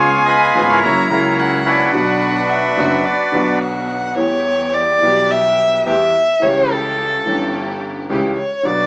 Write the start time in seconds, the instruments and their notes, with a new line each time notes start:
Already playing: upright piano C#2 C#3 G#3 B3 F4, double bass C#2, string section B3 C#4 F4, bandoneon F4 G#4 C#5, violin G#5
0.25 bandoneon G#4 B4 D#5
0.55 upright piano G#1 G#2 C#3 G#3 B3 F4, double bass G#1, string section B3 C#4 F4
0.69 bandoneon E4 A#4 C#5
0.83 double bass F#1, upright piano F#2 C#3 F#3 A#3 E4, string section A#3 E4 F#4, violin A#5
1.09 upright piano C#2 C#3 F#3 A#3 E4, double bass C#2, string section A#3 E4 F#4, bandoneon E4 A#4
1.13 bandoneon C#4
1.39 violin F#5
1.66 bandoneon D4 F#4 B4
1.87 violin G5
1.92 upright piano B1 B2 D3 F#3 B3, double bass B1, string section B3 D4 F#4, violin F#5
1.96 upright piano F#4
2.49 violin E5
2.77 upright piano F#1 F#2 D3 F#3 B3 F#4, double bass F#1, string section B3 D4 F#4
3.05 violin D5
3.32 upright piano B1 B2 D3 F#3 B3, double bass B1, string section B3 D4 F#4
3.36 upright piano F#4
3.62 violin F#5
4.16 upright piano E2 E3 G3 B3 G4, double bass E2, string section B3 E4 G4, violin C#5
4.74 violin D5
5.00 double bass B1, upright piano B1 B2 E3 G3 B3, string section B3 E4 G4
5.05 upright piano G4
5.31 violin E5
5.86 upright piano E2 E3 G3 B3 G4, double bass E2, string section B3 E4 G4, violin E5
6.40 upright piano C#2 C#3 E3 G3 C#4, double bass C#2, string section C#4 E4 G4, violin C#5
6.44 upright piano G4
6.71 violin A4
7.25 double bass G1, upright piano G1 G2 E3 G3 C#4, string section C#4 E4 G4
7.29 upright piano G4
8.09 upright piano C#2 C#3 E3 G3 C#4 G4, double bass C#2, string section C#4 E4 G4
8.37 violin C#5
8.63 upright piano B1 B2 D3 F#3 B3 F#4, double bass B1, string section B3 D4 F#4, violin D5